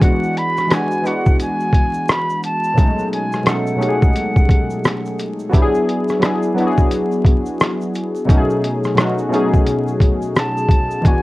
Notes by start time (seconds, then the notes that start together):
0.00 E3 G#3 B3 D4 F#5, kick, closed hi-hat, shaker
0.04 F#4
0.23 shaker
0.37 B5, closed hi-hat
0.57 cross-stick, shaker
0.67 E3 G#3 B3, closed hi-hat
0.71 D4 F#4 G#5, cross-stick, shaker
0.91 shaker
1.02 E3 G#3 B3, shaker
1.06 D4 F#4 F#5, closed hi-hat
1.26 kick, shaker
1.40 G#5, closed hi-hat, shaker
1.60 shaker
1.73 kick, closed hi-hat
1.94 shaker
2.09 B5, cross-stick, closed hi-hat, shaker
2.30 shaker
2.43 A5, closed hi-hat, shaker
2.64 shaker
2.74 B2 F#3 A3 C#4, kick, shaker
2.78 G#3 D#4, closed hi-hat
2.99 shaker
3.13 G#5, closed hi-hat
3.32 cross-stick, shaker
3.43 B2 F#3 A3 C#4, cross-stick, closed hi-hat
3.48 D#4 A4 F#5, shaker
3.67 shaker
3.76 B2 F#3 A3 C#4
3.81 D#4 G4, closed hi-hat, shaker
3.88 G#4
4.02 kick, shaker
4.16 closed hi-hat, shaker
4.36 kick, shaker
4.49 kick, closed hi-hat
4.70 shaker
4.84 cross-stick, closed hi-hat, shaker
5.06 shaker
5.19 closed hi-hat, shaker
5.39 shaker
5.49 F#3 B3 D4, kick, shaker
5.54 E4 G4, closed hi-hat
5.62 G#4
5.75 shaker
5.89 closed hi-hat
6.08 cross-stick, shaker
6.20 F#3 B3 D4, cross-stick, closed hi-hat, shaker
6.24 E4 G#4
6.43 shaker
6.55 F#3 B3 D4, closed hi-hat, shaker
6.59 E4 F#4
6.67 G#4
6.78 kick, shaker
6.91 closed hi-hat, shaker
7.12 shaker
7.25 kick, closed hi-hat
7.46 shaker
7.60 cross-stick, closed hi-hat, shaker
7.81 shaker
7.95 closed hi-hat, shaker
8.15 shaker
8.25 B2 F#3 A3 C#4, kick
8.29 D#4 F#4, closed hi-hat, shaker
8.38 G#4
8.50 shaker
8.64 closed hi-hat
8.84 cross-stick, shaker
8.95 B2 F#3 A3 C#4, cross-stick, closed hi-hat
8.99 D#4 F#4, shaker
9.18 shaker
9.29 B2 F#3 A3 C#4, shaker
9.34 D#4 G#4, closed hi-hat
9.54 kick, shaker
9.67 closed hi-hat, shaker
9.88 shaker
10.00 kick, closed hi-hat
10.22 shaker
10.36 A5, cross-stick, closed hi-hat, shaker
10.57 shaker
10.69 kick, closed hi-hat, shaker
10.91 shaker
11.02 E3 G#3 B3, kick, closed hi-hat, shaker
11.06 D4 F#4 G#5